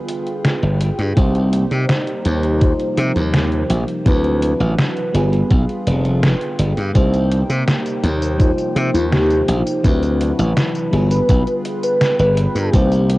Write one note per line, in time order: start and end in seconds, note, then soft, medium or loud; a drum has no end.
0.00 1.15 D3 medium
0.00 1.09 G3 medium
0.00 1.09 B3 medium
0.00 1.10 F4 medium
0.00 1.15 F4 medium
0.00 1.10 G#4 medium
0.00 1.14 B4 medium
0.00 2.58 G5 medium
0.08 closed hi-hat medium
0.27 closed hi-hat soft
0.45 snare loud
0.45 closed hi-hat medium
0.63 0.89 G1 medium
0.63 closed hi-hat soft
0.81 closed hi-hat medium
0.99 1.12 G2 medium
0.99 closed hi-hat soft
1.15 1.64 C2 medium
1.15 4.03 C3 medium
1.15 2.60 G3 medium
1.15 2.54 A#3 medium
1.15 4.03 A#3 medium
1.15 2.54 D#4 medium
1.15 4.03 D#4 medium
1.15 2.55 G4 medium
1.15 2.55 C5 medium
1.15 kick loud
1.15 closed hi-hat medium
1.35 closed hi-hat soft
1.53 closed hi-hat medium
1.71 1.85 C3 medium
1.71 closed hi-hat soft
1.89 snare loud
1.89 closed hi-hat medium
2.07 closed hi-hat soft
2.25 2.72 D#2 medium
2.25 closed hi-hat medium
2.43 closed hi-hat soft
2.60 4.04 F3 medium
2.60 3.98 G3 medium
2.60 3.99 D#4 medium
2.60 3.99 F4 medium
2.60 4.04 G4 medium
2.60 4.00 C5 medium
2.60 kick loud
2.60 closed hi-hat medium
2.79 closed hi-hat soft
2.97 3.11 C3 loud
2.97 closed hi-hat medium
3.16 3.63 D#2 medium
3.16 closed hi-hat soft
3.34 snare loud
3.34 closed hi-hat medium
3.52 closed hi-hat soft
3.70 3.83 A#1 loud
3.70 closed hi-hat medium
3.88 closed hi-hat soft
4.04 4.53 D2 medium
4.04 5.13 C3 medium
4.04 5.13 E3 medium
4.04 5.07 F#3 medium
4.04 5.07 C4 medium
4.04 5.13 D4 medium
4.04 5.08 E4 medium
4.04 5.13 F#4 medium
4.04 6.92 B4 medium
4.04 5.08 B4 medium
4.04 kick loud
4.04 closed hi-hat medium
4.24 closed hi-hat soft
4.42 closed hi-hat medium
4.60 4.74 A1 medium
4.60 closed hi-hat soft
4.79 snare loud
4.79 closed hi-hat medium
4.97 closed hi-hat soft
5.13 5.41 G1 medium
5.13 6.93 D3 medium
5.13 6.87 G3 medium
5.13 6.88 B3 medium
5.13 6.93 F4 medium
5.13 6.88 F4 medium
5.13 6.89 G#4 medium
5.13 9.80 G5 medium
5.13 closed hi-hat medium
5.33 closed hi-hat soft
5.51 5.64 B1 medium
5.51 kick loud
5.51 closed hi-hat medium
5.69 closed hi-hat soft
5.87 6.34 F1 medium
5.87 closed hi-hat medium
6.05 closed hi-hat soft
6.23 snare loud
6.23 closed hi-hat medium
6.41 closed hi-hat soft
6.59 6.73 G1 loud
6.59 closed hi-hat medium
6.77 6.91 G2 medium
6.77 closed hi-hat soft
6.93 7.42 C2 medium
6.93 10.89 C3 medium
6.93 8.38 G3 medium
6.93 8.32 A#3 medium
6.93 8.38 A#3 medium
6.93 8.32 D#4 medium
6.93 8.38 D#4 medium
6.93 8.33 G4 medium
6.93 8.33 C5 medium
6.93 kick loud
6.93 closed hi-hat medium
6.93 tambourine soft
7.14 closed hi-hat soft
7.14 tambourine soft
7.31 closed hi-hat medium
7.50 7.63 C3 medium
7.50 closed hi-hat soft
7.50 tambourine soft
7.68 snare loud
7.68 closed hi-hat medium
7.68 tambourine soft
7.86 closed hi-hat soft
7.86 tambourine soft
8.04 8.50 D#2 medium
8.04 closed hi-hat medium
8.22 closed hi-hat soft
8.22 tambourine medium
8.38 9.83 F3 medium
8.38 9.76 G3 medium
8.38 9.83 A#3 medium
8.38 9.77 D#4 medium
8.38 9.83 D#4 medium
8.38 9.77 F4 medium
8.38 9.78 C5 medium
8.38 kick loud
8.38 closed hi-hat medium
8.38 tambourine soft
8.58 closed hi-hat soft
8.58 tambourine soft
8.76 8.89 C3 loud
8.76 closed hi-hat medium
8.94 9.41 D#2 medium
8.94 9.08 F4 medium
8.94 closed hi-hat soft
8.94 tambourine soft
9.12 9.56 G4 medium
9.12 snare loud
9.12 closed hi-hat medium
9.12 tambourine soft
9.30 closed hi-hat soft
9.30 tambourine soft
9.48 9.62 A#1 loud
9.48 closed hi-hat medium
9.67 closed hi-hat soft
9.67 tambourine soft
9.83 10.31 D2 medium
9.83 10.92 E3 medium
9.83 10.85 F#3 medium
9.83 10.85 C4 medium
9.83 10.92 D4 medium
9.83 10.86 E4 medium
9.83 10.92 F#4 medium
9.83 12.71 B4 medium
9.83 10.87 B4 medium
9.83 kick loud
9.83 closed hi-hat medium
9.83 tambourine soft
10.03 closed hi-hat soft
10.03 tambourine soft
10.21 closed hi-hat medium
10.39 10.52 A1 medium
10.39 closed hi-hat soft
10.39 tambourine soft
10.57 snare loud
10.57 closed hi-hat medium
10.57 tambourine soft
10.75 closed hi-hat soft
10.75 tambourine soft
10.91 11.20 G1 loud
10.91 12.72 D3 medium
10.91 12.66 G3 medium
10.91 12.66 B3 medium
10.91 12.72 F4 medium
10.91 12.67 F4 medium
10.91 12.67 G#4 loud
10.91 13.18 G5 medium
10.91 closed hi-hat medium
11.11 11.54 B4 medium
11.11 closed hi-hat soft
11.11 tambourine medium
11.29 11.43 B1 medium
11.29 kick loud
11.29 closed hi-hat medium
11.29 tambourine soft
11.47 closed hi-hat soft
11.47 tambourine soft
11.65 closed hi-hat medium
11.83 12.16 B4 medium
11.83 closed hi-hat soft
11.83 tambourine medium
12.01 snare loud
12.01 closed hi-hat medium
12.01 tambourine soft
12.19 12.46 G1 medium
12.19 12.74 B4 medium
12.19 closed hi-hat soft
12.19 tambourine soft
12.37 closed hi-hat medium
12.55 12.69 G2 medium
12.55 closed hi-hat soft
12.55 tambourine medium
12.72 13.18 C2 medium
12.72 13.18 C3 medium
12.72 13.18 G3 medium
12.72 13.18 A#3 medium
12.72 13.18 D#4 medium
12.72 13.18 G4 medium
12.72 13.18 C5 medium
12.72 kick loud
12.72 closed hi-hat medium
12.72 tambourine soft
12.92 closed hi-hat soft
12.92 tambourine soft
13.10 closed hi-hat medium